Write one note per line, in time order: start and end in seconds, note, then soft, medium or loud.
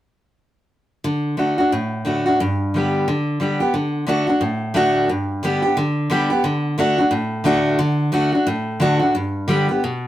1.04 1.36 D3 medium
1.37 1.57 D3 medium
1.37 1.57 A3 medium
1.37 1.57 D4 medium
1.37 1.57 F#4 medium
1.58 1.72 D4 medium
1.58 1.71 F#4 medium
1.72 2.37 A2 medium
2.05 2.24 D3 medium
2.05 2.25 A3 medium
2.05 2.25 D4 medium
2.05 2.25 F#4 medium
2.26 2.39 D4 soft
2.26 2.38 F#4 medium
2.40 3.04 G2 medium
2.74 3.06 D3 medium
2.74 3.06 G3 medium
2.74 3.07 B3 medium
2.74 3.07 G4 medium
3.08 3.39 D3 medium
3.40 3.59 D3 medium
3.40 3.60 G3 medium
3.40 3.60 B3 medium
3.40 3.59 G4 medium
3.60 3.74 B3 soft
3.60 3.73 G4 medium
3.74 4.05 D3 medium
4.07 4.27 D3 medium
4.07 4.27 A3 medium
4.07 4.27 D4 medium
4.07 4.26 F#4 loud
4.27 4.42 D4 soft
4.27 4.40 F#4 medium
4.41 5.06 A2 medium
4.74 5.07 D3 medium
4.74 5.07 A3 medium
4.74 5.08 D4 medium
4.74 5.08 F#4 loud
5.09 5.74 G2 medium
5.43 5.62 D3 medium
5.43 5.63 G3 medium
5.43 5.63 B3 medium
5.43 5.61 G4 medium
5.62 5.77 B3 soft
5.62 5.76 G4 medium
5.77 6.08 D3 medium
6.10 6.30 D3 medium
6.10 6.30 G3 medium
6.10 6.30 B3 medium
6.10 6.29 G4 medium
6.30 6.45 B3 medium
6.30 6.43 G4 medium
6.44 6.76 D3 medium
6.78 6.97 D3 medium
6.78 6.98 A3 medium
6.78 6.98 D4 medium
6.78 6.97 F#4 medium
6.98 7.12 D4 medium
6.98 7.11 F#4 medium
7.11 7.76 A2 medium
7.44 7.77 D3 medium
7.44 7.78 A3 medium
7.44 7.78 D4 medium
7.44 7.78 F#4 loud
7.79 8.11 D3 loud
8.12 8.32 D3 medium
8.12 8.32 A3 medium
8.12 8.33 D4 medium
8.12 8.31 F#4 loud
8.32 8.47 D4 soft
8.32 8.46 F#4 medium
8.47 9.12 A2 medium
8.80 9.00 D3 medium
8.80 9.00 A3 medium
8.80 9.01 D4 loud
8.80 8.98 F#4 loud
8.99 9.14 D4 soft
8.99 9.13 F#4 medium
9.15 9.80 G2 medium
9.48 9.68 D3 medium
9.48 9.68 G3 medium
9.48 9.68 B3 medium
9.48 9.67 G4 medium
9.69 9.83 B3 soft
9.69 9.82 G4 medium
9.84 10.07 B2 medium